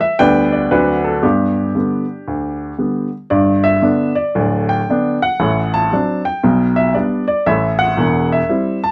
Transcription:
grand piano
0.01 E5
0.19 D2 D3 G3 B3 B4 D5 G5
0.52 D5
0.71 D2 D3 F#3 C4 D4 F#4 B4
1.04 A4
1.23 G2 B3 D4 G4
1.75 D3 G3 B3
2.28 D2
2.78 D3 G3 B3
3.30 G1 G2 D5
3.64 E5
3.82 D3 B3 D4
4.15 D5
4.35 D1 D2
4.69 G5
4.89 D3 B3 D4
5.22 F#5
5.40 A1 A2
5.74 A5
5.93 F#3 C4 D4
6.25 G5
6.43 B1 B2
6.76 E5
6.94 G3 B3 D4 D5
7.28 D5
7.46 A1 A2 E5
7.79 F#5
7.97 E1 E2
8.32 E5
8.49 G3 C4 E4
8.84 A5

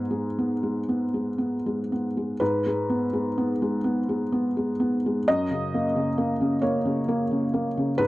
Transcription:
felt piano
Already playing: G#2 G#3 B3 G#4
0.11 G#3
0.39 B3
0.63 G#3
0.89 B3
1.14 G#3
1.38 B3
1.66 G#3
1.92 B3
2.17 G#3
2.40 G#2 B4
2.66 G#3
2.90 B3
3.13 G#3
3.38 B3
3.62 G#3
3.84 B3
4.09 G#3
4.32 B3
4.57 G#3
4.80 B3
5.06 G#3
5.28 F#2 D#5
5.51 C#3
5.74 A#3
5.96 C#3
6.18 A#3
6.41 C#3
6.62 A#3 C#5
6.85 C#3
7.08 A#3
7.31 C#3
7.54 A#3
7.77 C#3
7.98 G#2 B4

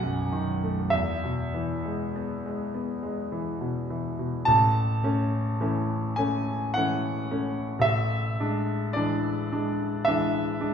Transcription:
grand piano
Already playing: B1 F#5
0.03 F#2
0.32 D#3
0.63 A3
0.90 E2 E5
1.24 B2
1.54 E3
1.85 G#3
2.16 B3
2.46 G#3
2.74 B3
3.03 G#3
3.32 E3
3.61 B2
3.90 E3
4.19 B2
4.45 A1 A5
5.04 A3 C#4
5.61 E3 A3 C#4
6.16 A3 C#4 G#5
6.74 E3 A3 C#4 F#5
7.31 A3 C#4
7.79 A1 E5
8.40 G#3 D4
8.93 E3 G#3 D4 D5
9.52 G#3 D4
10.05 E3 G#3 D4 E5
10.61 G#3 D4

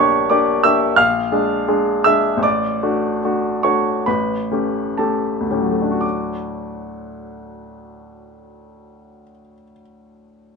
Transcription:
grand piano
Already playing: A#1 A#3 D4 G4 C#5 C#6
0.30 A#3 D4 G4 D5 D6
0.64 A#3 D4 G4 E5 E6
0.96 A#1 F5 F6
1.32 G#3 D4 G#4
1.68 G#3 D4 G#4
2.04 G#3 D4 G#4 E5 E6
2.37 A1
2.43 D5 D6
2.83 A3 D4 F#4
3.24 A3 D4 F#4
3.63 A3 D4 F#4 C#5 C#6
4.06 A1 B4 B5
4.51 A3 C#4 G4
4.98 A3 C#4 G4 A4 A5
5.41 D2
5.50 A2 A3 C#4 G4
5.61 F#3
5.71 A3
5.82 D4
5.92 F#4
6.01 D6

